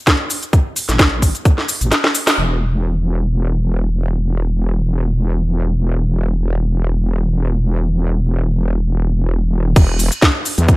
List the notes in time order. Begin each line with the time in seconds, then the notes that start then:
0.07 kick, snare, closed hi-hat, cabasa
0.30 open hi-hat, cabasa
0.43 closed hi-hat, cabasa
0.53 kick, closed hi-hat, cabasa
0.76 open hi-hat, cabasa
0.89 A1, snare, closed hi-hat, cabasa
0.99 kick, snare, closed hi-hat, cabasa
1.22 kick, open hi-hat, cabasa
1.35 closed hi-hat, cabasa
1.45 kick, closed hi-hat, cabasa
1.58 snare
1.68 open hi-hat, cabasa
1.81 A1, closed hi-hat, cabasa
1.92 snare, closed hi-hat, cabasa
2.04 snare
2.15 open hi-hat, cabasa
2.27 snare, open hi-hat, cabasa
2.38 E1
9.76 E1, kick, closed hi-hat, crash, cabasa
9.99 open hi-hat, cabasa
10.12 closed hi-hat, cabasa
10.22 kick, snare, closed hi-hat, cabasa
10.45 open hi-hat, cabasa
10.58 E2, closed hi-hat, cabasa
10.68 kick, closed hi-hat, cabasa